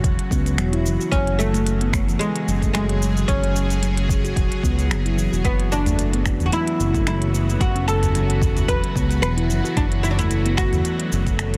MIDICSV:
0, 0, Header, 1, 7, 480
1, 0, Start_track
1, 0, Key_signature, 3, "minor"
1, 0, Tempo, 540541
1, 995, Time_signature, 4, 2, 24, 8
1, 10274, End_track
2, 0, Start_track
2, 0, Title_t, "Oud"
2, 0, Program_c, 0, 24
2, 991, Note_on_c, 0, 61, 113
2, 1216, Note_off_c, 0, 61, 0
2, 1231, Note_on_c, 0, 57, 99
2, 1943, Note_off_c, 0, 57, 0
2, 1947, Note_on_c, 0, 56, 99
2, 2418, Note_off_c, 0, 56, 0
2, 2429, Note_on_c, 0, 56, 89
2, 2878, Note_off_c, 0, 56, 0
2, 2912, Note_on_c, 0, 61, 99
2, 3360, Note_off_c, 0, 61, 0
2, 4839, Note_on_c, 0, 59, 97
2, 5078, Note_on_c, 0, 62, 96
2, 5084, Note_off_c, 0, 59, 0
2, 5731, Note_off_c, 0, 62, 0
2, 5735, Note_on_c, 0, 66, 77
2, 5793, Note_off_c, 0, 66, 0
2, 5797, Note_on_c, 0, 64, 110
2, 6270, Note_off_c, 0, 64, 0
2, 6280, Note_on_c, 0, 64, 94
2, 6750, Note_off_c, 0, 64, 0
2, 6754, Note_on_c, 0, 66, 110
2, 6991, Note_off_c, 0, 66, 0
2, 6995, Note_on_c, 0, 69, 111
2, 7707, Note_off_c, 0, 69, 0
2, 7710, Note_on_c, 0, 71, 114
2, 8177, Note_off_c, 0, 71, 0
2, 8188, Note_on_c, 0, 71, 106
2, 8637, Note_off_c, 0, 71, 0
2, 8672, Note_on_c, 0, 62, 103
2, 8738, Note_off_c, 0, 62, 0
2, 8909, Note_on_c, 0, 64, 104
2, 8973, Note_off_c, 0, 64, 0
2, 8976, Note_on_c, 0, 62, 89
2, 9044, Note_off_c, 0, 62, 0
2, 9048, Note_on_c, 0, 64, 107
2, 9385, Note_off_c, 0, 64, 0
2, 9388, Note_on_c, 0, 66, 97
2, 10274, Note_off_c, 0, 66, 0
2, 10274, End_track
3, 0, Start_track
3, 0, Title_t, "Handpan"
3, 0, Program_c, 1, 114
3, 275, Note_on_c, 1, 59, 73
3, 400, Note_off_c, 1, 59, 0
3, 515, Note_on_c, 1, 54, 90
3, 640, Note_off_c, 1, 54, 0
3, 644, Note_on_c, 1, 64, 79
3, 748, Note_off_c, 1, 64, 0
3, 755, Note_on_c, 1, 52, 76
3, 873, Note_off_c, 1, 52, 0
3, 884, Note_on_c, 1, 66, 79
3, 988, Note_off_c, 1, 66, 0
3, 992, Note_on_c, 1, 54, 81
3, 1352, Note_off_c, 1, 54, 0
3, 1367, Note_on_c, 1, 57, 85
3, 1470, Note_off_c, 1, 57, 0
3, 1606, Note_on_c, 1, 59, 74
3, 1668, Note_off_c, 1, 59, 0
3, 1845, Note_on_c, 1, 52, 76
3, 1949, Note_off_c, 1, 52, 0
3, 2326, Note_on_c, 1, 57, 85
3, 2429, Note_off_c, 1, 57, 0
3, 2434, Note_on_c, 1, 54, 100
3, 2559, Note_off_c, 1, 54, 0
3, 3047, Note_on_c, 1, 61, 80
3, 3150, Note_off_c, 1, 61, 0
3, 3154, Note_on_c, 1, 49, 75
3, 3383, Note_off_c, 1, 49, 0
3, 3396, Note_on_c, 1, 54, 83
3, 3520, Note_off_c, 1, 54, 0
3, 3768, Note_on_c, 1, 66, 80
3, 3870, Note_off_c, 1, 66, 0
3, 4114, Note_on_c, 1, 59, 75
3, 4239, Note_off_c, 1, 59, 0
3, 4353, Note_on_c, 1, 54, 87
3, 4479, Note_off_c, 1, 54, 0
3, 4486, Note_on_c, 1, 64, 71
3, 4589, Note_off_c, 1, 64, 0
3, 4592, Note_on_c, 1, 52, 75
3, 4712, Note_off_c, 1, 52, 0
3, 4725, Note_on_c, 1, 66, 78
3, 4829, Note_off_c, 1, 66, 0
3, 4835, Note_on_c, 1, 54, 80
3, 5193, Note_off_c, 1, 54, 0
3, 5206, Note_on_c, 1, 57, 79
3, 5309, Note_off_c, 1, 57, 0
3, 5448, Note_on_c, 1, 59, 76
3, 5509, Note_off_c, 1, 59, 0
3, 5556, Note_on_c, 1, 54, 70
3, 5630, Note_off_c, 1, 54, 0
3, 5687, Note_on_c, 1, 52, 75
3, 5790, Note_off_c, 1, 52, 0
3, 6167, Note_on_c, 1, 57, 76
3, 6270, Note_off_c, 1, 57, 0
3, 6277, Note_on_c, 1, 54, 101
3, 6401, Note_off_c, 1, 54, 0
3, 6883, Note_on_c, 1, 61, 77
3, 6988, Note_off_c, 1, 61, 0
3, 6992, Note_on_c, 1, 49, 75
3, 7223, Note_off_c, 1, 49, 0
3, 7230, Note_on_c, 1, 54, 87
3, 7357, Note_off_c, 1, 54, 0
3, 7601, Note_on_c, 1, 66, 80
3, 7707, Note_off_c, 1, 66, 0
3, 7951, Note_on_c, 1, 59, 76
3, 8078, Note_off_c, 1, 59, 0
3, 8194, Note_on_c, 1, 54, 85
3, 8319, Note_off_c, 1, 54, 0
3, 8320, Note_on_c, 1, 64, 79
3, 8426, Note_off_c, 1, 64, 0
3, 8427, Note_on_c, 1, 52, 76
3, 8549, Note_off_c, 1, 52, 0
3, 8561, Note_on_c, 1, 66, 81
3, 8667, Note_off_c, 1, 66, 0
3, 8672, Note_on_c, 1, 54, 82
3, 9032, Note_off_c, 1, 54, 0
3, 9044, Note_on_c, 1, 57, 85
3, 9148, Note_off_c, 1, 57, 0
3, 9287, Note_on_c, 1, 59, 82
3, 9348, Note_off_c, 1, 59, 0
3, 9397, Note_on_c, 1, 54, 71
3, 9471, Note_off_c, 1, 54, 0
3, 9527, Note_on_c, 1, 52, 82
3, 9630, Note_off_c, 1, 52, 0
3, 10006, Note_on_c, 1, 57, 78
3, 10109, Note_off_c, 1, 57, 0
3, 10114, Note_on_c, 1, 54, 99
3, 10239, Note_off_c, 1, 54, 0
3, 10274, End_track
4, 0, Start_track
4, 0, Title_t, "Synth drone"
4, 0, Program_c, 2, 95
4, 0, Note_on_c, 2, 49, 82
4, 0, Note_on_c, 2, 54, 73
4, 0, Note_on_c, 2, 66, 93
4, 961, Note_off_c, 2, 66, 0
4, 994, Note_on_c, 2, 68, 89
4, 4798, Note_off_c, 2, 68, 0
4, 4800, Note_off_c, 2, 49, 0
4, 4800, Note_off_c, 2, 54, 0
4, 4835, Note_on_c, 2, 52, 82
4, 4835, Note_on_c, 2, 66, 89
4, 4836, Note_on_c, 2, 59, 80
4, 4838, Note_on_c, 2, 54, 78
4, 8639, Note_off_c, 2, 52, 0
4, 8640, Note_off_c, 2, 59, 0
4, 8672, Note_on_c, 2, 50, 86
4, 8673, Note_on_c, 2, 57, 80
4, 10274, Note_off_c, 2, 50, 0
4, 10274, Note_off_c, 2, 54, 0
4, 10274, Note_off_c, 2, 57, 0
4, 10274, Note_off_c, 2, 66, 0
4, 10274, End_track
5, 0, Start_track
5, 0, Title_t, "Analog synth bass"
5, 0, Program_c, 3, 38
5, 34, Note_on_c, 3, 28, 98
5, 144, Note_off_c, 3, 28, 0
5, 274, Note_on_c, 3, 37, 100
5, 510, Note_off_c, 3, 37, 0
5, 515, Note_on_c, 3, 28, 89
5, 758, Note_on_c, 3, 30, 107
5, 772, Note_off_c, 3, 28, 0
5, 865, Note_off_c, 3, 30, 0
5, 993, Note_on_c, 3, 30, 97
5, 1924, Note_off_c, 3, 30, 0
5, 2199, Note_on_c, 3, 30, 82
5, 2888, Note_off_c, 3, 30, 0
5, 2916, Note_on_c, 3, 30, 99
5, 3846, Note_off_c, 3, 30, 0
5, 3876, Note_on_c, 3, 28, 109
5, 3984, Note_off_c, 3, 28, 0
5, 4115, Note_on_c, 3, 37, 103
5, 4353, Note_on_c, 3, 30, 82
5, 4366, Note_off_c, 3, 37, 0
5, 4689, Note_off_c, 3, 30, 0
5, 4727, Note_on_c, 3, 28, 82
5, 4817, Note_off_c, 3, 28, 0
5, 4833, Note_on_c, 3, 30, 91
5, 5764, Note_off_c, 3, 30, 0
5, 6033, Note_on_c, 3, 30, 90
5, 6724, Note_off_c, 3, 30, 0
5, 6753, Note_on_c, 3, 30, 94
5, 7684, Note_off_c, 3, 30, 0
5, 7714, Note_on_c, 3, 28, 113
5, 7823, Note_off_c, 3, 28, 0
5, 7953, Note_on_c, 3, 37, 109
5, 8184, Note_off_c, 3, 37, 0
5, 8190, Note_on_c, 3, 28, 96
5, 8431, Note_on_c, 3, 30, 106
5, 8444, Note_off_c, 3, 28, 0
5, 8542, Note_off_c, 3, 30, 0
5, 8671, Note_on_c, 3, 30, 101
5, 9604, Note_off_c, 3, 30, 0
5, 9874, Note_on_c, 3, 30, 85
5, 10274, Note_off_c, 3, 30, 0
5, 10274, End_track
6, 0, Start_track
6, 0, Title_t, "Udu"
6, 5202, Note_on_c, 9, 64, 96
6, 5291, Note_off_c, 9, 64, 0
6, 5683, Note_on_c, 9, 64, 90
6, 5772, Note_off_c, 9, 64, 0
6, 7130, Note_on_c, 9, 64, 82
6, 7219, Note_off_c, 9, 64, 0
6, 7470, Note_on_c, 9, 64, 79
6, 7559, Note_off_c, 9, 64, 0
6, 7605, Note_on_c, 9, 64, 85
6, 7694, Note_off_c, 9, 64, 0
6, 9041, Note_on_c, 9, 64, 88
6, 9130, Note_off_c, 9, 64, 0
6, 9518, Note_on_c, 9, 64, 94
6, 9607, Note_off_c, 9, 64, 0
6, 10274, End_track
7, 0, Start_track
7, 0, Title_t, "Drums"
7, 34, Note_on_c, 9, 36, 111
7, 37, Note_on_c, 9, 42, 70
7, 43, Note_on_c, 9, 69, 34
7, 123, Note_off_c, 9, 36, 0
7, 126, Note_off_c, 9, 42, 0
7, 132, Note_off_c, 9, 69, 0
7, 168, Note_on_c, 9, 42, 46
7, 257, Note_off_c, 9, 42, 0
7, 274, Note_on_c, 9, 36, 67
7, 283, Note_on_c, 9, 69, 82
7, 363, Note_off_c, 9, 36, 0
7, 372, Note_off_c, 9, 69, 0
7, 411, Note_on_c, 9, 42, 33
7, 416, Note_on_c, 9, 69, 48
7, 499, Note_off_c, 9, 42, 0
7, 505, Note_off_c, 9, 69, 0
7, 517, Note_on_c, 9, 26, 86
7, 517, Note_on_c, 9, 42, 73
7, 523, Note_on_c, 9, 69, 38
7, 606, Note_off_c, 9, 26, 0
7, 606, Note_off_c, 9, 42, 0
7, 612, Note_off_c, 9, 69, 0
7, 649, Note_on_c, 9, 42, 49
7, 738, Note_off_c, 9, 42, 0
7, 764, Note_on_c, 9, 69, 82
7, 853, Note_off_c, 9, 69, 0
7, 896, Note_on_c, 9, 69, 45
7, 984, Note_off_c, 9, 69, 0
7, 994, Note_on_c, 9, 36, 127
7, 999, Note_on_c, 9, 42, 66
7, 1005, Note_on_c, 9, 69, 36
7, 1083, Note_off_c, 9, 36, 0
7, 1088, Note_off_c, 9, 42, 0
7, 1093, Note_off_c, 9, 69, 0
7, 1131, Note_on_c, 9, 42, 44
7, 1219, Note_off_c, 9, 42, 0
7, 1244, Note_on_c, 9, 69, 89
7, 1333, Note_off_c, 9, 69, 0
7, 1370, Note_on_c, 9, 42, 31
7, 1376, Note_on_c, 9, 69, 48
7, 1459, Note_off_c, 9, 42, 0
7, 1465, Note_off_c, 9, 69, 0
7, 1478, Note_on_c, 9, 42, 67
7, 1484, Note_on_c, 9, 69, 37
7, 1567, Note_off_c, 9, 42, 0
7, 1573, Note_off_c, 9, 69, 0
7, 1608, Note_on_c, 9, 42, 43
7, 1697, Note_off_c, 9, 42, 0
7, 1715, Note_on_c, 9, 36, 120
7, 1718, Note_on_c, 9, 26, 79
7, 1724, Note_on_c, 9, 69, 86
7, 1804, Note_off_c, 9, 36, 0
7, 1807, Note_off_c, 9, 26, 0
7, 1813, Note_off_c, 9, 69, 0
7, 1851, Note_on_c, 9, 42, 30
7, 1857, Note_on_c, 9, 69, 47
7, 1940, Note_off_c, 9, 42, 0
7, 1946, Note_off_c, 9, 69, 0
7, 1960, Note_on_c, 9, 42, 67
7, 1966, Note_on_c, 9, 69, 36
7, 2049, Note_off_c, 9, 42, 0
7, 2055, Note_off_c, 9, 69, 0
7, 2092, Note_on_c, 9, 42, 43
7, 2180, Note_off_c, 9, 42, 0
7, 2206, Note_on_c, 9, 69, 80
7, 2295, Note_off_c, 9, 69, 0
7, 2326, Note_on_c, 9, 36, 67
7, 2331, Note_on_c, 9, 42, 31
7, 2337, Note_on_c, 9, 69, 47
7, 2415, Note_off_c, 9, 36, 0
7, 2420, Note_off_c, 9, 42, 0
7, 2425, Note_off_c, 9, 69, 0
7, 2439, Note_on_c, 9, 26, 84
7, 2439, Note_on_c, 9, 42, 72
7, 2445, Note_on_c, 9, 69, 37
7, 2528, Note_off_c, 9, 26, 0
7, 2528, Note_off_c, 9, 42, 0
7, 2534, Note_off_c, 9, 69, 0
7, 2570, Note_on_c, 9, 42, 43
7, 2659, Note_off_c, 9, 42, 0
7, 2685, Note_on_c, 9, 69, 91
7, 2774, Note_off_c, 9, 69, 0
7, 2816, Note_on_c, 9, 69, 50
7, 2905, Note_off_c, 9, 69, 0
7, 2916, Note_on_c, 9, 36, 126
7, 2919, Note_on_c, 9, 42, 67
7, 2925, Note_on_c, 9, 69, 37
7, 3004, Note_off_c, 9, 36, 0
7, 3007, Note_off_c, 9, 42, 0
7, 3013, Note_off_c, 9, 69, 0
7, 3051, Note_on_c, 9, 42, 46
7, 3140, Note_off_c, 9, 42, 0
7, 3162, Note_on_c, 9, 69, 90
7, 3251, Note_off_c, 9, 69, 0
7, 3289, Note_on_c, 9, 42, 31
7, 3295, Note_on_c, 9, 69, 47
7, 3378, Note_off_c, 9, 42, 0
7, 3384, Note_off_c, 9, 69, 0
7, 3399, Note_on_c, 9, 42, 61
7, 3404, Note_on_c, 9, 69, 36
7, 3487, Note_off_c, 9, 42, 0
7, 3493, Note_off_c, 9, 69, 0
7, 3529, Note_on_c, 9, 42, 43
7, 3618, Note_off_c, 9, 42, 0
7, 3635, Note_on_c, 9, 36, 116
7, 3645, Note_on_c, 9, 69, 83
7, 3723, Note_off_c, 9, 36, 0
7, 3733, Note_off_c, 9, 69, 0
7, 3771, Note_on_c, 9, 42, 30
7, 3777, Note_on_c, 9, 69, 48
7, 3860, Note_off_c, 9, 42, 0
7, 3865, Note_off_c, 9, 69, 0
7, 3875, Note_on_c, 9, 36, 115
7, 3879, Note_on_c, 9, 42, 66
7, 3885, Note_on_c, 9, 69, 37
7, 3963, Note_off_c, 9, 36, 0
7, 3968, Note_off_c, 9, 42, 0
7, 3974, Note_off_c, 9, 69, 0
7, 4011, Note_on_c, 9, 42, 43
7, 4100, Note_off_c, 9, 42, 0
7, 4115, Note_on_c, 9, 36, 66
7, 4126, Note_on_c, 9, 69, 77
7, 4204, Note_off_c, 9, 36, 0
7, 4215, Note_off_c, 9, 69, 0
7, 4251, Note_on_c, 9, 42, 29
7, 4256, Note_on_c, 9, 69, 43
7, 4339, Note_off_c, 9, 42, 0
7, 4345, Note_off_c, 9, 69, 0
7, 4361, Note_on_c, 9, 26, 85
7, 4361, Note_on_c, 9, 42, 64
7, 4367, Note_on_c, 9, 69, 38
7, 4450, Note_off_c, 9, 26, 0
7, 4450, Note_off_c, 9, 42, 0
7, 4456, Note_off_c, 9, 69, 0
7, 4493, Note_on_c, 9, 42, 45
7, 4581, Note_off_c, 9, 42, 0
7, 4605, Note_on_c, 9, 69, 82
7, 4694, Note_off_c, 9, 69, 0
7, 4737, Note_on_c, 9, 69, 47
7, 4826, Note_off_c, 9, 69, 0
7, 4835, Note_on_c, 9, 36, 126
7, 4837, Note_on_c, 9, 42, 69
7, 4843, Note_on_c, 9, 69, 35
7, 4924, Note_off_c, 9, 36, 0
7, 4926, Note_off_c, 9, 42, 0
7, 4932, Note_off_c, 9, 69, 0
7, 4969, Note_on_c, 9, 42, 45
7, 5058, Note_off_c, 9, 42, 0
7, 5082, Note_on_c, 9, 69, 85
7, 5171, Note_off_c, 9, 69, 0
7, 5207, Note_on_c, 9, 42, 30
7, 5213, Note_on_c, 9, 69, 45
7, 5296, Note_off_c, 9, 42, 0
7, 5302, Note_off_c, 9, 69, 0
7, 5317, Note_on_c, 9, 42, 62
7, 5323, Note_on_c, 9, 69, 33
7, 5406, Note_off_c, 9, 42, 0
7, 5412, Note_off_c, 9, 69, 0
7, 5448, Note_on_c, 9, 42, 45
7, 5536, Note_off_c, 9, 42, 0
7, 5555, Note_on_c, 9, 26, 74
7, 5555, Note_on_c, 9, 36, 110
7, 5561, Note_on_c, 9, 69, 80
7, 5644, Note_off_c, 9, 26, 0
7, 5644, Note_off_c, 9, 36, 0
7, 5650, Note_off_c, 9, 69, 0
7, 5685, Note_on_c, 9, 42, 32
7, 5691, Note_on_c, 9, 69, 43
7, 5774, Note_off_c, 9, 42, 0
7, 5780, Note_off_c, 9, 69, 0
7, 5794, Note_on_c, 9, 42, 64
7, 5800, Note_on_c, 9, 69, 34
7, 5883, Note_off_c, 9, 42, 0
7, 5889, Note_off_c, 9, 69, 0
7, 5927, Note_on_c, 9, 42, 44
7, 6016, Note_off_c, 9, 42, 0
7, 6041, Note_on_c, 9, 69, 81
7, 6130, Note_off_c, 9, 69, 0
7, 6166, Note_on_c, 9, 36, 64
7, 6167, Note_on_c, 9, 42, 28
7, 6173, Note_on_c, 9, 69, 43
7, 6255, Note_off_c, 9, 36, 0
7, 6256, Note_off_c, 9, 42, 0
7, 6262, Note_off_c, 9, 69, 0
7, 6276, Note_on_c, 9, 26, 81
7, 6276, Note_on_c, 9, 42, 69
7, 6282, Note_on_c, 9, 69, 36
7, 6365, Note_off_c, 9, 26, 0
7, 6365, Note_off_c, 9, 42, 0
7, 6371, Note_off_c, 9, 69, 0
7, 6409, Note_on_c, 9, 42, 43
7, 6497, Note_off_c, 9, 42, 0
7, 6524, Note_on_c, 9, 69, 89
7, 6613, Note_off_c, 9, 69, 0
7, 6656, Note_on_c, 9, 69, 46
7, 6745, Note_off_c, 9, 69, 0
7, 6753, Note_on_c, 9, 36, 121
7, 6757, Note_on_c, 9, 42, 69
7, 6763, Note_on_c, 9, 69, 35
7, 6842, Note_off_c, 9, 36, 0
7, 6846, Note_off_c, 9, 42, 0
7, 6852, Note_off_c, 9, 69, 0
7, 6888, Note_on_c, 9, 42, 47
7, 6977, Note_off_c, 9, 42, 0
7, 7002, Note_on_c, 9, 69, 78
7, 7091, Note_off_c, 9, 69, 0
7, 7129, Note_on_c, 9, 42, 31
7, 7135, Note_on_c, 9, 69, 45
7, 7218, Note_off_c, 9, 42, 0
7, 7224, Note_off_c, 9, 69, 0
7, 7238, Note_on_c, 9, 42, 68
7, 7244, Note_on_c, 9, 69, 30
7, 7327, Note_off_c, 9, 42, 0
7, 7333, Note_off_c, 9, 69, 0
7, 7369, Note_on_c, 9, 42, 44
7, 7458, Note_off_c, 9, 42, 0
7, 7473, Note_on_c, 9, 36, 108
7, 7480, Note_on_c, 9, 69, 77
7, 7562, Note_off_c, 9, 36, 0
7, 7569, Note_off_c, 9, 69, 0
7, 7607, Note_on_c, 9, 42, 30
7, 7613, Note_on_c, 9, 69, 43
7, 7696, Note_off_c, 9, 42, 0
7, 7701, Note_off_c, 9, 69, 0
7, 7712, Note_on_c, 9, 36, 108
7, 7716, Note_on_c, 9, 42, 70
7, 7722, Note_on_c, 9, 69, 32
7, 7801, Note_off_c, 9, 36, 0
7, 7805, Note_off_c, 9, 42, 0
7, 7811, Note_off_c, 9, 69, 0
7, 7846, Note_on_c, 9, 42, 44
7, 7935, Note_off_c, 9, 42, 0
7, 7952, Note_on_c, 9, 36, 68
7, 7962, Note_on_c, 9, 69, 76
7, 8041, Note_off_c, 9, 36, 0
7, 8051, Note_off_c, 9, 69, 0
7, 8086, Note_on_c, 9, 42, 31
7, 8092, Note_on_c, 9, 69, 45
7, 8175, Note_off_c, 9, 42, 0
7, 8181, Note_off_c, 9, 69, 0
7, 8195, Note_on_c, 9, 26, 81
7, 8195, Note_on_c, 9, 42, 74
7, 8201, Note_on_c, 9, 69, 35
7, 8284, Note_off_c, 9, 26, 0
7, 8284, Note_off_c, 9, 42, 0
7, 8290, Note_off_c, 9, 69, 0
7, 8326, Note_on_c, 9, 42, 50
7, 8415, Note_off_c, 9, 42, 0
7, 8439, Note_on_c, 9, 69, 78
7, 8528, Note_off_c, 9, 69, 0
7, 8572, Note_on_c, 9, 69, 42
7, 8661, Note_off_c, 9, 69, 0
7, 8672, Note_on_c, 9, 36, 121
7, 8675, Note_on_c, 9, 42, 71
7, 8681, Note_on_c, 9, 69, 34
7, 8761, Note_off_c, 9, 36, 0
7, 8763, Note_off_c, 9, 42, 0
7, 8769, Note_off_c, 9, 69, 0
7, 8806, Note_on_c, 9, 42, 50
7, 8895, Note_off_c, 9, 42, 0
7, 8919, Note_on_c, 9, 69, 81
7, 9008, Note_off_c, 9, 69, 0
7, 9046, Note_on_c, 9, 42, 35
7, 9052, Note_on_c, 9, 69, 46
7, 9135, Note_off_c, 9, 42, 0
7, 9141, Note_off_c, 9, 69, 0
7, 9153, Note_on_c, 9, 42, 67
7, 9159, Note_on_c, 9, 69, 31
7, 9242, Note_off_c, 9, 42, 0
7, 9248, Note_off_c, 9, 69, 0
7, 9285, Note_on_c, 9, 42, 47
7, 9374, Note_off_c, 9, 42, 0
7, 9393, Note_on_c, 9, 36, 109
7, 9395, Note_on_c, 9, 26, 82
7, 9401, Note_on_c, 9, 69, 77
7, 9481, Note_off_c, 9, 36, 0
7, 9484, Note_off_c, 9, 26, 0
7, 9490, Note_off_c, 9, 69, 0
7, 9526, Note_on_c, 9, 42, 33
7, 9532, Note_on_c, 9, 69, 45
7, 9615, Note_off_c, 9, 42, 0
7, 9621, Note_off_c, 9, 69, 0
7, 9634, Note_on_c, 9, 42, 73
7, 9640, Note_on_c, 9, 69, 33
7, 9723, Note_off_c, 9, 42, 0
7, 9729, Note_off_c, 9, 69, 0
7, 9765, Note_on_c, 9, 42, 46
7, 9853, Note_off_c, 9, 42, 0
7, 9878, Note_on_c, 9, 69, 80
7, 9967, Note_off_c, 9, 69, 0
7, 10003, Note_on_c, 9, 36, 66
7, 10005, Note_on_c, 9, 42, 32
7, 10011, Note_on_c, 9, 69, 46
7, 10092, Note_off_c, 9, 36, 0
7, 10093, Note_off_c, 9, 42, 0
7, 10099, Note_off_c, 9, 69, 0
7, 10114, Note_on_c, 9, 26, 83
7, 10114, Note_on_c, 9, 42, 73
7, 10120, Note_on_c, 9, 69, 35
7, 10203, Note_off_c, 9, 26, 0
7, 10203, Note_off_c, 9, 42, 0
7, 10209, Note_off_c, 9, 69, 0
7, 10245, Note_on_c, 9, 42, 51
7, 10274, Note_off_c, 9, 42, 0
7, 10274, End_track
0, 0, End_of_file